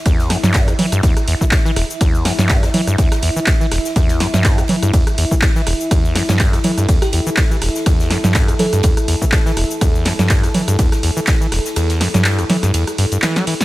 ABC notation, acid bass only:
X:1
M:4/4
L:1/16
Q:"Swing 16ths" 1/4=123
K:Em
V:1 name="Acid bass" clef=bass
E,,2 G,, G,,2 E,, E, G,, E,, z E,, E, z E, E,,, z | E,,2 G,, G,,2 E,, E, G,, E,, z E,, E, z E, E,,, z | E,,2 G,, G,,2 E,, E, G,, E,, z E,, E, z E, E,,, z | E,,2 G,, G,,2 E,, E, G,, E,, z E,, E, z E, E,,, z |
E,,2 G,, G,,2 E,, E, G,, E,, z E,, E, z E, E,,, z | E,,2 G,, G,,2 E,, E, G,, E,, z E,, E, z E, E,,, z | E,,2 G,, G,,2 E,, E, G,, E,, z G,, G,, E, G, E, z |]